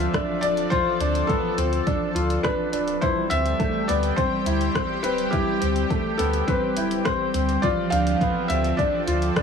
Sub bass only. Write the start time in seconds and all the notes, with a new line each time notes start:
0.42 D1
1.00 D2
1.57 D2
2.15 D2
2.73 D1
3.31 D2
3.89 D2
4.46 D2
5.04 D1
5.62 D2
6.19 D2
6.76 D1
7.34 D2
7.91 D2
8.49 D2
9.07 D2